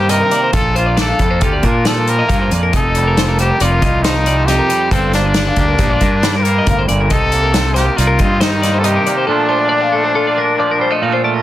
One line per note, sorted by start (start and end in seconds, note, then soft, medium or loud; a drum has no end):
0.00 0.22 G2 medium
0.00 0.54 D#3 medium
0.00 0.31 A#3 medium
0.00 0.56 C4 medium
0.00 0.12 G4 medium
0.08 0.50 C3 medium
0.08 0.53 D#4 medium
0.08 0.52 A#4 medium
0.08 0.21 D#5 medium
0.08 closed hi-hat medium
0.21 0.32 A#4 medium
0.31 0.75 A#3 medium
0.31 0.43 D5 medium
0.31 closed hi-hat medium
0.43 0.54 C5 medium
0.53 1.12 A#1 medium
0.53 2.29 A#2 medium
0.53 1.42 F4 medium
0.53 0.74 A4 medium
0.53 0.75 A4 medium
0.53 kick medium
0.53 closed hi-hat medium
0.75 1.19 A#3 medium
0.75 0.97 F4 medium
0.75 0.86 C5 medium
0.75 closed hi-hat soft
0.86 0.96 D5 medium
0.97 1.63 D4 medium
0.97 1.46 A4 medium
0.97 1.08 D5 medium
0.97 snare loud
0.97 closed hi-hat medium
1.08 1.19 F5 medium
1.19 1.41 F2 medium
1.19 1.30 G3 medium
1.19 1.30 A4 medium
1.19 kick medium
1.19 closed hi-hat soft
1.30 2.07 A#3 soft
1.30 1.41 C5 medium
1.41 1.61 D2 medium
1.41 2.30 F4 medium
1.41 1.67 G4 medium
1.41 1.53 A4 medium
1.41 kick medium
1.41 closed hi-hat medium
1.53 1.64 D5 medium
1.63 2.21 A#2 medium
1.63 2.71 D4 medium
1.63 1.88 F4 medium
1.63 1.86 A#4 medium
1.63 kick medium
1.63 closed hi-hat soft
1.85 2.79 F3 medium
1.85 2.11 A4 medium
1.85 1.96 D5 medium
1.85 snare loud
1.85 closed hi-hat medium
1.96 2.08 A#4 medium
2.07 2.20 G3 medium
2.07 2.52 A#4 medium
2.07 2.18 C5 medium
2.07 closed hi-hat medium
2.19 2.52 A#3 soft
2.19 2.28 D#5 medium
2.29 2.49 G2 medium
2.29 2.42 D#4 medium
2.29 2.40 F5 medium
2.29 kick medium
2.29 closed hi-hat medium
2.41 2.74 F4 medium
2.41 2.52 C5 medium
2.51 2.71 F2 medium
2.51 2.97 A#3 soft
2.51 2.63 D5 medium
2.51 closed hi-hat medium
2.63 2.73 A#4 medium
2.73 3.50 F1 medium
2.73 4.46 F2 medium
2.73 3.60 D#4 medium
2.73 3.36 A4 medium
2.73 2.95 D#5 medium
2.73 kick medium
2.73 closed hi-hat medium
2.95 3.39 G3 medium
2.95 3.06 D5 medium
2.95 closed hi-hat medium
3.07 3.17 A#4 medium
3.17 3.82 A#3 soft
3.17 3.28 C5 medium
3.17 snare loud
3.17 closed hi-hat medium
3.29 3.39 A#4 medium
3.39 4.26 G3 medium
3.39 3.64 G4 medium
3.39 3.51 C5 medium
3.39 closed hi-hat medium
3.51 3.61 A#4 medium
3.60 3.80 F1 medium
3.60 4.48 D#4 medium
3.60 4.05 F4 medium
3.60 3.71 D5 medium
3.60 closed hi-hat medium
3.71 3.82 A#4 medium
3.82 4.59 C2 medium
3.82 5.15 A#3 medium
3.82 4.04 D#5 medium
3.82 kick medium
3.82 closed hi-hat medium
4.03 4.89 F3 medium
4.03 4.48 D#4 medium
4.03 4.15 C5 medium
4.03 snare loud
4.03 closed hi-hat medium
4.15 4.26 A#4 medium
4.26 4.70 G3 medium
4.26 4.37 D5 medium
4.26 closed hi-hat medium
4.37 4.48 C5 medium
4.46 4.89 F2 medium
4.46 4.92 D#4 medium
4.46 4.91 G4 medium
4.46 4.59 D#5 medium
4.46 snare soft
4.46 closed hi-hat medium
4.59 4.70 A#4 medium
4.70 5.14 G3 medium
4.70 4.81 D5 medium
4.70 closed hi-hat medium
4.81 4.92 C5 medium
4.91 5.49 G1 medium
4.91 6.67 G2 medium
4.91 5.12 C4 medium
4.91 5.79 F4 medium
4.91 5.14 A4 medium
4.91 kick loud
4.91 closed hi-hat medium
5.13 5.57 A#3 medium
5.13 6.34 D4 medium
5.13 5.26 C5 medium
5.13 snare soft
5.13 closed hi-hat medium
5.26 5.36 D5 medium
5.34 6.02 D4 medium
5.34 5.47 D5 medium
5.34 snare loud
5.34 closed hi-hat medium
5.47 5.58 F5 medium
5.56 5.79 D2 medium
5.56 6.45 A#3 medium
5.56 5.68 G4 medium
5.56 kick medium
5.56 closed hi-hat medium
5.68 5.79 A#4 medium
5.78 5.98 A#1 medium
5.78 5.92 D#4 medium
5.78 5.90 G4 medium
5.78 kick loud
5.78 snare soft
5.78 closed hi-hat medium
5.90 7.11 F4 medium
5.90 6.01 D5 medium
6.01 6.59 G2 medium
6.01 7.15 D4 medium
6.01 6.23 A#4 medium
6.01 kick medium
6.01 closed hi-hat medium
6.23 7.08 G3 medium
6.23 6.35 D5 medium
6.23 snare loud
6.23 closed hi-hat medium
6.36 6.46 A#4 medium
6.36 6.44 C5 medium
6.43 7.15 A#3 medium
6.43 6.82 A#4 medium
6.43 6.57 C5 medium
6.43 closed hi-hat medium
6.58 6.68 D#5 medium
6.67 6.86 G1 medium
6.67 6.89 A2 medium
6.67 6.78 F5 medium
6.67 kick loud
6.67 closed hi-hat medium
6.79 6.88 C5 medium
6.88 7.09 G1 medium
6.88 7.11 A#2 medium
6.88 6.99 D5 medium
6.88 closed hi-hat medium
7.01 7.11 A#4 medium
7.10 8.42 C3 medium
7.10 7.99 D#4 medium
7.10 7.77 A4 loud
7.10 7.33 D#5 medium
7.10 kick loud
7.10 closed hi-hat medium
7.32 7.76 A#3 medium
7.32 7.43 D5 medium
7.32 closed hi-hat medium
7.43 7.53 A#4 medium
7.53 8.21 C4 medium
7.53 7.64 C5 medium
7.53 snare loud
7.53 closed hi-hat medium
7.64 7.74 A#4 medium
7.74 8.65 A#3 medium
7.74 7.98 G4 medium
7.74 7.86 C5 medium
7.74 snare soft
7.74 closed hi-hat medium
7.86 7.97 A#4 medium
7.97 8.17 C2 medium
7.97 8.84 D#4 medium
7.97 8.42 F4 medium
7.97 8.08 D5 medium
7.97 closed hi-hat medium
8.07 8.19 A#4 medium
8.19 8.97 G2 medium
8.19 9.30 C4 medium
8.19 8.40 D#5 medium
8.19 kick medium
8.19 closed hi-hat medium
8.40 9.29 D#3 medium
8.40 8.81 D#4 medium
8.40 8.51 C5 medium
8.40 snare loud
8.40 closed hi-hat medium
8.51 8.62 A#4 medium
8.62 9.06 A#3 medium
8.62 8.73 D5 medium
8.62 snare soft
8.62 closed hi-hat medium
8.74 8.84 C5 medium
8.79 8.87 A4 medium
8.84 9.26 C3 medium
8.84 9.29 D#4 medium
8.84 9.27 G4 medium
8.84 8.96 D#5 medium
8.84 closed hi-hat medium
8.96 9.07 A#4 medium
9.06 9.29 A#3 medium
9.06 9.17 D5 medium
9.06 closed hi-hat medium
9.17 9.27 C5 medium
9.27 11.01 A#2 medium
9.27 10.57 F3 medium
9.27 9.48 A3 medium
9.27 10.99 D4 medium
9.27 9.71 D4 medium
9.27 9.49 A4 medium
9.31 10.15 F4 medium
9.49 9.94 A3 medium
9.49 9.59 C5 medium
9.59 9.68 D5 medium
9.69 10.37 D4 medium
9.69 9.81 D5 medium
9.81 9.93 F5 medium
9.92 10.79 A3 medium
9.92 10.04 A4 medium
10.04 10.15 C5 medium
10.15 11.02 F4 medium
10.15 10.27 A4 medium
10.27 10.38 D5 medium
10.38 11.42 D4 medium
10.38 10.60 A#4 medium
10.59 11.42 F3 medium
10.59 10.71 D5 medium
10.71 10.81 A#4 medium
10.79 10.90 G3 medium
10.79 10.93 C5 medium
10.90 11.23 A3 soft
10.90 11.03 D#5 medium
11.02 11.42 A#2 medium
11.02 11.12 D#4 medium
11.02 11.14 F5 medium
11.12 11.42 F4 medium
11.12 11.24 C5 medium
11.24 11.42 A3 medium
11.24 11.34 D5 medium
11.34 11.42 A#4 medium